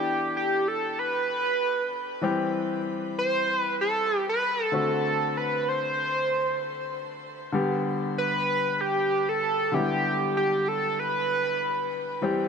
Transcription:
0.00 2.18 E3 medium
0.00 2.18 B3 medium
0.00 2.19 D4 medium
0.00 0.36 G4 medium
0.00 2.19 G4 medium
0.37 0.69 G4 medium
0.68 1.00 A4 medium
0.99 2.24 B4 loud
2.21 4.68 E3 medium
2.21 4.69 G3 medium
2.21 4.69 C4 medium
2.21 4.69 G4 medium
3.19 3.60 C5 loud
3.60 3.76 B4 loud
3.81 4.25 A4 loud
4.29 4.63 B4 loud
4.63 4.75 A4 loud
4.72 7.18 D3 medium
4.72 7.19 A3 medium
4.72 7.19 C4 medium
4.72 7.20 F#4 medium
4.72 5.39 A4 loud
5.37 5.70 B4 medium
5.69 6.93 C5 medium
7.52 9.68 D3 medium
7.52 9.69 G3 medium
7.52 9.69 B3 medium
7.52 9.69 G4 medium
8.18 8.82 B4 loud
8.81 9.30 G4 loud
9.29 9.76 A4 medium
9.72 12.18 D3 medium
9.72 9.80 F#3 soft
9.72 12.19 B3 medium
9.72 12.20 E4 medium
9.72 10.36 G4 loud
9.79 12.21 G3 medium
10.37 10.70 G4 medium
10.68 11.01 A4 medium
10.99 12.24 B4 loud
12.22 12.48 E3 medium
12.22 12.48 G3 medium
12.22 12.48 C4 medium
12.22 12.48 G4 medium

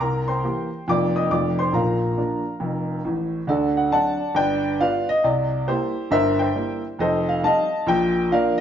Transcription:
0.00 0.36 C2 medium
0.00 0.37 C3 medium
0.00 0.26 A#4 medium
0.00 0.28 A#5 medium
0.28 0.83 C5 medium
0.28 0.83 G5 soft
0.28 0.87 C6 medium
0.43 0.67 E3 soft
0.43 0.67 A#3 soft
0.43 0.68 G4 soft
0.88 1.24 F1 medium
0.88 1.24 F2 medium
0.88 1.12 F3 soft
0.88 1.12 A#3 soft
0.88 1.13 F4 soft
0.88 1.15 D5 medium
0.88 1.16 D6 medium
1.16 1.30 D#5 medium
1.16 1.31 D#6 medium
1.30 1.67 F1 medium
1.30 1.68 F2 medium
1.30 1.54 F3 soft
1.30 1.55 A3 soft
1.30 1.55 F4 soft
1.30 1.57 D5 medium
1.30 1.59 D6 medium
1.59 1.73 C5 medium
1.59 1.74 C6 medium
1.72 2.10 A#1 soft
1.72 2.10 A#2 medium
1.72 3.02 A#4 soft
1.72 3.02 F5 soft
1.72 3.05 A#5 medium
2.17 2.42 F3 soft
2.17 2.42 A#3 soft
2.17 2.42 D4 soft
2.60 2.98 F1 medium
2.60 2.98 F2 medium
3.05 3.40 A1 medium
3.05 3.40 A2 medium
3.47 3.85 D2 medium
3.47 3.85 D3 medium
3.47 3.75 F#4 medium
3.47 3.75 A4 medium
3.47 3.77 D5 medium
3.77 3.92 F#5 medium
3.91 4.16 F#3 soft
3.91 4.16 C4 soft
3.91 4.17 D4 medium
3.91 4.34 D5 medium
3.91 4.34 F#5 medium
3.91 4.36 A5 medium
4.35 4.73 G1 medium
4.35 4.73 G2 medium
4.35 4.77 B4 medium
4.35 4.77 D5 medium
4.35 4.80 G5 loud
4.79 5.04 G3 soft
4.79 5.05 B3 soft
4.79 5.05 F4 soft
4.79 5.07 B4 medium
4.79 5.07 D5 medium
4.79 5.09 F5 medium
5.09 5.24 D#5 medium
5.24 5.61 C2 medium
5.24 5.61 C3 medium
5.24 5.68 D5 medium
5.67 5.92 G3 soft
5.67 5.92 A#3 soft
5.67 6.09 E4 medium
5.67 6.09 G4 medium
5.67 6.11 C5 medium
6.11 6.48 G1 medium
6.11 6.49 G2 medium
6.11 6.38 A#4 medium
6.11 6.38 C5 medium
6.11 6.39 E5 loud
6.39 6.81 C5 medium
6.39 6.81 E5 medium
6.39 6.83 G5 medium
6.55 6.79 G3 soft
6.55 6.80 A#3 soft
6.55 6.80 E4 medium
6.99 7.36 F1 medium
6.99 7.36 F2 medium
6.99 7.26 A4 medium
6.99 7.26 C5 medium
6.99 7.28 D#5 medium
7.29 7.44 F5 medium
7.43 7.67 G3 medium
7.43 7.67 C4 soft
7.43 7.68 D#4 soft
7.43 7.85 D#5 medium
7.43 7.85 F5 medium
7.43 7.87 A5 loud
7.87 8.24 A#1 medium
7.87 8.24 A#2 medium
7.87 8.31 G5 loud
8.31 8.55 F3 medium
8.31 8.56 A#3 medium
8.31 8.55 D4 soft
8.31 8.58 A#4 medium
8.31 8.58 D5 medium
8.31 8.59 F5 medium

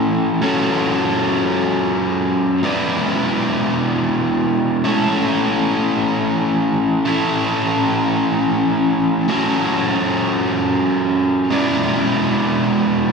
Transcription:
0.00 0.40 A3 medium
0.00 0.41 C#4 medium
0.00 0.42 E4 loud
0.00 0.41 A4 medium
0.00 0.42 C#5 loud
0.42 2.62 F#3 loud
0.42 2.62 C#4 medium
0.42 2.62 F#4 medium
0.42 2.63 A4 loud
0.42 2.63 C#5 loud
2.63 4.84 G#3 medium
2.63 4.83 B3 medium
2.63 4.85 E4 medium
2.63 4.84 B4 loud
2.63 4.84 D5 loud
4.84 7.05 A3 medium
4.84 7.05 C#4 loud
4.84 7.06 E4 medium
4.84 7.07 A4 medium
4.84 7.07 C#5 medium
7.05 9.26 A3 medium
7.05 9.27 C#4 medium
7.05 9.28 E4 medium
7.05 9.27 A4 medium
7.05 9.27 C#5 medium
9.28 11.49 F#3 medium
9.28 11.49 C#4 loud
9.28 11.49 F#4 medium
9.28 11.50 A4 medium
9.28 11.50 C#5 loud
11.50 13.12 G#3 medium
11.50 13.12 B3 medium
11.50 13.12 E4 loud
11.50 13.12 B4 medium
11.50 13.12 D5 loud

